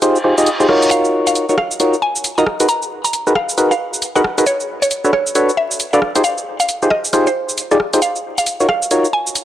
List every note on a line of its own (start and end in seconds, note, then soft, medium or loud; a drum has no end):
0.02 0.18 D#4 medium
0.02 0.18 F4 medium
0.02 0.18 G4 medium
0.02 0.18 G#4 medium
0.02 0.18 C5 medium
0.02 closed hi-hat medium
0.02 reverse cymbal medium
0.02 cabasa soft
0.16 cabasa soft
0.24 0.35 D#4 medium
0.24 0.35 F4 medium
0.24 0.35 G4 medium
0.24 0.35 G#4 medium
0.24 0.35 C5 medium
0.38 0.50 D#4 medium
0.38 0.50 F4 medium
0.38 0.50 G4 medium
0.38 0.50 G#4 medium
0.38 0.50 D#5 loud
0.38 closed hi-hat soft
0.38 cabasa medium
0.46 closed hi-hat medium
0.46 cabasa soft
0.60 0.67 D#4 medium
0.60 0.67 F4 medium
0.60 0.67 G4 medium
0.60 0.67 G#4 medium
0.60 0.67 C5 loud
0.60 cabasa soft
0.69 1.46 D#4 medium
0.69 1.46 F4 medium
0.69 1.46 F#4 medium
0.69 1.46 A#4 medium
0.69 1.46 C#5 loud
0.69 cross-stick soft
0.83 closed hi-hat medium
0.83 cabasa medium
0.91 1.09 F5 loud
0.91 closed hi-hat medium
0.91 cabasa soft
1.05 cabasa soft
1.27 1.43 F5 medium
1.27 closed hi-hat medium
1.27 cabasa medium
1.35 closed hi-hat medium
1.35 cabasa soft
1.49 1.56 D#4 medium
1.49 1.56 F4 medium
1.49 1.56 F#4 medium
1.49 1.56 A#4 medium
1.49 1.56 C#5 medium
1.49 cabasa soft
1.58 1.81 F5 loud
1.58 cross-stick soft
1.71 cabasa medium
1.80 1.96 D#4 medium
1.80 1.96 F4 medium
1.80 1.96 F#4 medium
1.80 1.96 A#4 medium
1.80 1.96 C#5 medium
1.80 closed hi-hat medium
1.80 cabasa soft
1.94 cabasa soft
2.02 2.21 G#5 medium
2.16 cabasa medium
2.24 closed hi-hat medium
2.24 cabasa soft
2.38 2.45 D#4 medium
2.38 2.45 F4 medium
2.38 2.45 F#4 medium
2.38 2.45 A#4 medium
2.38 2.45 D#5 loud
2.38 2.54 A#5 medium
2.38 cabasa soft
2.46 cross-stick soft
2.60 2.67 D#4 medium
2.60 2.67 F#4 medium
2.60 2.67 G#4 medium
2.60 2.67 A#4 medium
2.60 2.67 B4 medium
2.60 closed hi-hat medium
2.60 cabasa medium
2.69 2.87 A#5 medium
2.69 closed hi-hat medium
2.69 cabasa soft
2.82 cabasa soft
3.04 3.21 A#5 medium
3.04 closed hi-hat medium
3.04 cabasa medium
3.13 closed hi-hat medium
3.13 cabasa soft
3.27 3.33 D#4 medium
3.27 3.33 F#4 medium
3.27 3.33 G#4 medium
3.27 3.33 A#4 medium
3.27 3.33 B4 medium
3.27 cabasa soft
3.35 3.54 F5 medium
3.35 cross-stick soft
3.49 cabasa medium
3.58 3.73 D#4 medium
3.58 3.73 F#4 medium
3.58 3.73 G#4 medium
3.58 3.73 A#4 medium
3.58 3.73 B4 medium
3.58 closed hi-hat medium
3.58 cabasa soft
3.71 3.94 F5 medium
3.71 cabasa soft
3.94 cabasa medium
4.02 closed hi-hat medium
4.02 cabasa soft
4.16 4.22 D#4 medium
4.16 4.22 F#4 medium
4.16 4.22 G#4 medium
4.16 4.22 A#4 medium
4.16 4.22 B4 loud
4.16 4.32 F#5 medium
4.16 cabasa soft
4.24 cross-stick soft
4.38 4.45 D#4 medium
4.38 4.45 F#4 medium
4.38 4.45 G#4 medium
4.38 4.45 A#4 medium
4.38 4.44 B4 medium
4.38 closed hi-hat medium
4.38 cabasa medium
4.46 4.65 C#5 loud
4.46 closed hi-hat medium
4.46 cabasa soft
4.60 cabasa soft
4.82 4.98 C#5 medium
4.82 closed hi-hat medium
4.82 cabasa medium
4.91 closed hi-hat medium
4.91 cabasa soft
5.04 5.11 D4 medium
5.04 5.11 F#4 medium
5.04 5.11 A4 medium
5.04 5.11 B4 medium
5.04 5.11 C#5 medium
5.04 cabasa soft
5.13 5.36 C#5 medium
5.13 cross-stick soft
5.27 cabasa medium
5.35 5.51 D4 medium
5.35 5.51 F#4 medium
5.35 5.51 A4 medium
5.35 5.51 B4 medium
5.35 5.51 C#5 medium
5.35 closed hi-hat medium
5.35 cabasa soft
5.49 cabasa soft
5.57 5.76 E5 medium
5.71 cabasa medium
5.80 closed hi-hat medium
5.80 cabasa soft
5.93 6.00 D4 medium
5.93 6.00 F#4 medium
5.93 6.00 A4 medium
5.93 6.00 B4 medium
5.93 6.00 D5 loud
5.93 6.10 F5 medium
5.93 cabasa soft
6.02 cross-stick soft
6.16 6.22 D#4 medium
6.16 6.22 F4 medium
6.16 6.22 G4 medium
6.16 6.22 G#4 medium
6.16 6.22 C5 medium
6.16 closed hi-hat medium
6.16 cabasa medium
6.24 6.43 F5 loud
6.24 closed hi-hat medium
6.24 cabasa soft
6.38 cabasa soft
6.60 6.76 F5 medium
6.60 closed hi-hat medium
6.60 cabasa medium
6.69 closed hi-hat medium
6.69 cabasa medium
6.82 6.89 D#4 medium
6.82 6.89 F4 medium
6.82 6.89 G4 medium
6.82 6.89 G#4 medium
6.82 6.89 C5 medium
6.82 cabasa soft
6.90 7.09 D#5 medium
6.90 cross-stick soft
7.05 cabasa medium
7.13 7.29 D#4 medium
7.13 7.29 F4 medium
7.13 7.29 G4 medium
7.13 7.29 G#4 medium
7.13 7.29 C5 medium
7.13 cross-stick soft
7.13 closed hi-hat medium
7.13 cabasa medium
7.27 7.50 C5 medium
7.27 cabasa soft
7.49 cabasa medium
7.58 closed hi-hat medium
7.58 cabasa medium
7.71 7.78 D#4 medium
7.71 7.78 F4 medium
7.71 7.78 G4 medium
7.71 7.78 G#4 medium
7.71 7.88 G#4 medium
7.71 7.78 D5 loud
7.71 cabasa soft
7.80 cross-stick soft
7.93 8.00 D#4 medium
7.93 8.00 F4 medium
7.93 8.00 G4 medium
7.93 8.00 G#4 medium
7.93 8.00 C5 medium
7.93 closed hi-hat medium
7.93 cabasa medium
8.02 8.20 F5 loud
8.02 closed hi-hat medium
8.02 cabasa soft
8.16 cabasa soft
8.38 8.54 F5 medium
8.38 closed hi-hat medium
8.38 cabasa medium
8.46 closed hi-hat medium
8.46 cabasa medium
8.60 8.67 D#4 medium
8.60 8.67 F4 medium
8.60 8.67 F#4 medium
8.60 8.67 A#4 medium
8.60 8.67 C#5 medium
8.60 cabasa soft
8.69 8.92 F5 loud
8.69 cross-stick soft
8.82 cabasa medium
8.91 9.07 D#4 medium
8.91 9.07 F4 medium
8.91 9.07 F#4 medium
8.91 9.07 A#4 medium
8.91 9.07 C#5 medium
8.91 closed hi-hat medium
8.91 cabasa medium
9.05 cabasa soft
9.13 9.32 G#5 medium
9.27 cabasa medium
9.35 closed hi-hat medium
9.35 cabasa medium